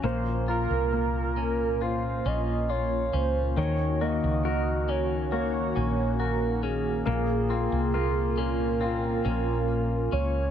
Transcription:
<<
  \new Staff \with { instrumentName = "Soft synth lead" } { \time 4/4 \key bes \minor \tempo 4 = 69 c''8 bes'4. c''8 ees''8 des''8 c''8 | des''8 ees''4 des''8 des''4 bes'8 aes'8~ | aes'4. bes'2 des''8 | }
  \new Staff \with { instrumentName = "Clean electric guitar" } { \time 4/4 \key bes \minor bes,8 f'4 des'8 f'8 des'8 f'8 des'8 | ees8 ges'8 bes'8 des'8 ges'8 des'8 ges'8 des'8 | bes,8 c'8 f'8 des'8 c'8 des'4 des'8 | }
  \new Staff \with { instrumentName = "Analog synth pad" } { \time 4/4 \key bes \minor << { <bes, f'>1 | <ees ges'>1 | <bes, f'>1 | } \\ { bes1~ | bes1~ | bes1 | } >> }
  \new Staff \with { instrumentName = "Grand piano" } { \time 4/4 \key bes \minor bes8 f'8 bes4 f'2 | ees8 bes8 ges'4 bes2 | bes8 f'8 bes4 f'2 | }
  \new Staff \with { instrumentName = "Fretless electric bass" } { \clef bass \time 4/4 \key bes \minor bes,,8. c,4.~ c,16 bes,,4 des,8 | ees,8. des,4.~ des,16 bes,,4. | bes,,8. c,4.~ c,16 bes,,4 des,8 | }
>>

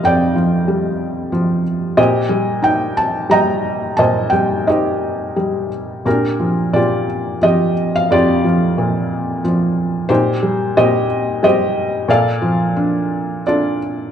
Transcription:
<<
  \new Staff \with { instrumentName = "Felt piano" } { \time 3/4 \key bes \major \tempo 4 = 90 << { g''2~ g''8 r8 | ees''4 g''8 a''8 bes''4 | a''8 g''8 ees''4. r8 | bes'4 d''4 ees''8. f''16 |
d''2 r4 | c''4 ees''4 ees''4 | f''2 d''4 | } \\ { d''2~ d''8 r8 | <g' c''>4. r8 <ees'' g''>4 | <c'' ees''>4 <g' c''>4. r8 | <d' g'>4 <f' g'>4 g'4 |
<f' g'>2 r4 | <ees' g'>4 <g' c''>4 <g' c''>4 | <a' d''>2 <d' a'>4 | } >> }
  \new Staff \with { instrumentName = "Felt piano" } { \clef bass \time 3/4 \key bes \major <f, f>8 f8 g4 f4 | bes,8 g8 ees'4 g4 | bes,8 g8 ees'4 g4 | bes,8 f8 bes,4 f4 |
f,8 f8 bes,4 f4 | bes,8 g8 bes,4 g4 | bes,8 f8 d'4 f'4 | }
>>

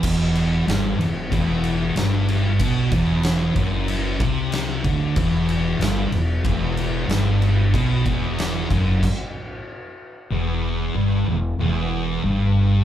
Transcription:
<<
  \new Staff \with { instrumentName = "Distorted electric guitar" } { \clef bass \time 4/4 \key e \minor \tempo 4 = 93 e,4 g,8 e,8 e,4 g,4 | b,8 e,4 fis,4 c4 d8 | e,4 g,8 e,8 e,4 g,4 | b,8 e,4 fis,8 r2 |
e,4 g,8 e,8 e,4 g,4 | }
  \new Staff \with { instrumentName = "Distorted electric guitar" } { \clef bass \time 4/4 \key e \minor e,4 g,8 e,8 e,4 g,4 | b,8 e,4 fis,4 c4 d8 | e,4 g,8 e,8 e,4 g,4 | b,8 e,4 fis,8 r2 |
e,4 g,8 e,8 e,4 g,4 | }
  \new Staff \with { instrumentName = "Upright bass" } { \clef bass \time 4/4 \key e \minor e,,4 g,,8 e,,8 e,,4 g,,4 | b,,8 e,,4 fis,,4 c,4 d,8 | e,,4 g,,8 e,,8 e,,4 g,,4 | b,,8 e,,4 fis,,8 r2 |
e,,4 g,,8 e,,8 e,,4 g,,4 | }
  \new DrumStaff \with { instrumentName = "Drums" } \drummode { \time 4/4 <cymc bd>8 cymc8 <cymc sn>8 cymc8 <cymc bd>8 cymc8 <cymc sn>8 cymc8 | <cymc bd>8 <cymc bd>8 <cymc sn>8 <cymc bd>8 cymc8 <cymc bd>8 <cymc sn>8 <cymc bd>8 | <cymc bd>8 cymc8 <cymc sn>8 cymc8 <cymc bd>8 cymc8 <cymc sn>8 cymc8 | <cymc bd>8 <cymc bd>8 <cymc sn>8 <cymc bd>8 <cymc bd>4 r4 |
r4 r4 r4 r4 | }
>>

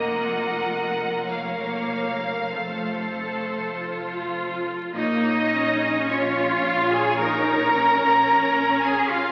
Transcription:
<<
  \new Staff \with { instrumentName = "Violin section" } { \time 4/4 \key bes \minor \tempo 4 = 52 ges''4 f''2 r4 | des''1 | }
  \new Staff \with { instrumentName = "Violin section" } { \time 4/4 \key bes \minor << { ees''4 des''4 c''2 | ees''4 des''8 f''16 aes''16 bes''4. aes''16 f''16 | } \\ { bes'2 a'2 | r1 | } >> }
  \new Staff \with { instrumentName = "Cello section" } { \time 4/4 \key bes \minor f,1 | ees'4 des'8 f'16 aes'16 bes'4. aes'16 f'16 | }
  \new Staff \with { instrumentName = "Viola section" } { \time 4/4 \key bes \minor <bes f'>4 bes4 a4 f'4 | bes8 des'8 f'4 ees'8 des'4. | }
  \new Staff \with { instrumentName = "Double bass section" } { \clef bass \time 4/4 \key bes \minor f,,1 | bes,,1 | }
>>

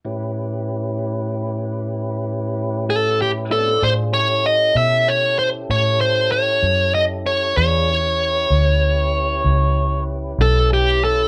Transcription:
<<
  \new Staff \with { instrumentName = "Lead electric guitar" } { \time 12/8 \key a \mixolydian \tempo 4. = 64 r1 r8 a'8 g'8 a'8 | c''8 cis''8 dis''8 e''8 cis''8 c''8 cis''8 c''8 cis''4 dis''8 cis''8 | cis''1 r8 a'8 g'8 a'8 | }
  \new Staff \with { instrumentName = "Tonewheel organ" } { \time 12/8 \key a \mixolydian <a, cis' e' g' b'>1. | <a b c' d' e' f' g' gis' a' b' c'' d''>8 <cis' e' g' a'>1~ <cis' e' g' a'>4. | <d' f' gis' b'>8 <cis' e' g' b'>1~ <cis' e' g' b'>4. | }
  \new Staff \with { instrumentName = "Fingered electric bass" } { \clef bass \time 12/8 \key a \mixolydian r1. | a,4. b,4. a,4. fis,4. | e,4. d,4. cis,4. b,,4. | }
>>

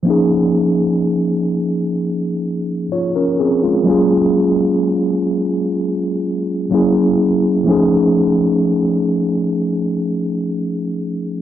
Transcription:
\new Staff \with { instrumentName = "Tine electric piano" } { \time 4/4 \key des \major \tempo 4 = 63 << { r2. <f' des''>16 <des' bes'>16 <c' aes'>16 <aes f'>16~ | <aes f'>16 r2. r8. | r1 | } \\ { <f bes des' ees' aes'>1 | <ges bes des' f' aes'>2. <ges bes des' fes' aes'>4 | <f a cis' ees' gis'>1 | } >> }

